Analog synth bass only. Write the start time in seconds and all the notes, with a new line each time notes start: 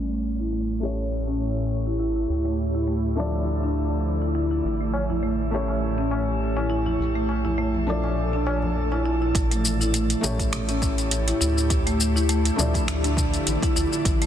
Already playing: A1
2.29 D2
4.65 A1
6.99 A#1
9.35 A1
10.23 A1
11.41 D2
12.59 D2
12.88 D2
13.47 A1
13.76 D2
14.05 A1